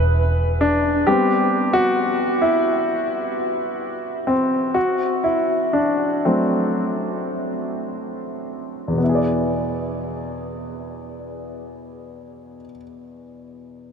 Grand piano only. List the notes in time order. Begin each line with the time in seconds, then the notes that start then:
Already playing: E4 B4
0.61 D4
1.07 G3 B3 C4 G4
1.73 F#4
2.42 E4
4.27 C4
4.74 F#4
5.24 E4
5.73 D4
6.25 F#3 A3 C4
8.88 E2
8.93 B2
8.98 B3
9.04 E4
9.09 G#4
9.15 D5